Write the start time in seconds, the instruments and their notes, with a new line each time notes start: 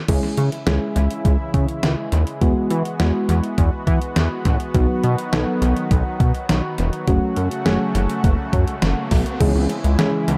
0.08 analog synth bass C#2, analog synth pad C#3 E3 G#3 E4, fm electric piano G#3 C#4 E4 G#4, kick, closed hi-hat, crash
0.37 analog synth bass C#3, closed hi-hat
0.52 closed hi-hat
0.67 analog synth bass C#2, fm electric piano G#3 C#4 E4 G#4, snare, closed hi-hat
0.96 analog synth bass C#2, closed hi-hat
1.11 closed hi-hat
1.25 analog synth bass C#2, kick, closed hi-hat
1.54 analog synth bass C#3, kick, closed hi-hat
1.69 closed hi-hat
1.83 analog synth bass C#2, snare, closed hi-hat
2.12 analog synth bass D#2, closed hi-hat
2.27 closed hi-hat
2.42 analog synth bass E2, fm electric piano G#3 B3 E4 F#4, analog synth pad B3 F#4, kick, closed hi-hat
2.70 analog synth bass E3, closed hi-hat
2.85 closed hi-hat
3.00 analog synth bass E2, fm electric piano G#3 B3 E4 F#4, snare, closed hi-hat
3.29 analog synth bass E2, closed hi-hat
3.44 closed hi-hat
3.58 analog synth bass E2, kick, closed hi-hat
3.87 analog synth bass E3, kick, closed hi-hat
4.02 closed hi-hat
4.16 analog synth bass E2, snare, closed hi-hat
4.45 analog synth bass A1, kick, closed hi-hat
4.60 closed hi-hat
4.74 analog synth bass B1, analog synth pad D#3 F#3, fm electric piano F#3 B3 D#4 F#4, kick, closed hi-hat
5.04 analog synth bass B2, closed hi-hat
5.18 closed hi-hat
5.33 analog synth bass B1, fm electric piano F#3 B3 D#4 A4, snare, closed hi-hat
5.62 analog synth bass B1, closed hi-hat
5.77 closed hi-hat
5.91 analog synth bass B1, kick, closed hi-hat
6.20 analog synth bass B2, kick, closed hi-hat
6.35 closed hi-hat
6.49 analog synth bass B1, snare, closed hi-hat
6.78 analog synth bass E1, closed hi-hat
6.93 closed hi-hat
7.08 analog synth bass F#1, analog synth pad C#3 A3 F#4, fm electric piano F#3 A3 C#4 F#4, kick, closed hi-hat, riser
7.36 analog synth bass F#2, closed hi-hat
7.51 closed hi-hat
7.66 analog synth bass F#1, fm electric piano F#3 A3 C#4 G#4, snare, closed hi-hat
7.95 analog synth bass F#1, closed hi-hat
8.10 closed hi-hat
8.24 analog synth bass F#1, kick, closed hi-hat
8.53 analog synth bass F#2, kick, closed hi-hat
8.68 closed hi-hat
8.82 analog synth bass F#1, snare, closed hi-hat
9.11 analog synth bass B1, kick, open hi-hat
9.26 closed hi-hat
9.40 analog synth bass C#2, analog synth pad C#3 E3 G#3 E4, fm electric piano E3 G#3 C#4 E4 G#4, kick, closed hi-hat, crash
9.55 analog synth bass C#2
9.70 closed hi-hat
9.84 analog synth bass C#2, closed hi-hat
9.99 analog synth bass C#2, fm electric piano E3 G#3 C#4 E4 G#4, snare, closed hi-hat
10.28 analog synth bass C#2, closed hi-hat